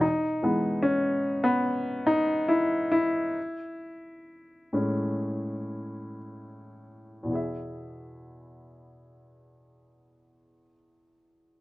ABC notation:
X:1
M:4/4
L:1/16
Q:1/4=62
K:E
V:1 name="Grand piano"
D4 C3 B,3 D2 E2 E2- | E12 z4 | z16 |]
V:2 name="Grand piano" clef=bass
z2 [E,G,B,]12- [E,G,B,]2 | z6 [A,,G,C]8- [A,,G,C]2 | [E,,B,,E,B,Ge]16 |]